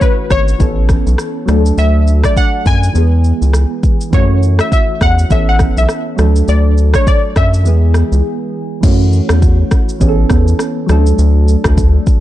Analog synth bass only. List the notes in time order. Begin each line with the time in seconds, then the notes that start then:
0.31 G#1
0.60 A1
1.06 B1
1.48 D2
1.78 D2
2.66 F#2
2.95 E2
3.42 C#2
4.13 F#2
5.01 E2
5.31 A1
5.77 B1
6.19 D2
6.48 D2
7.36 F#2
7.66 E2
8.12 C#2
8.83 F#2
9.30 E2
10.01 A1
10.30 E2
10.89 D2
11.18 D2
11.65 D2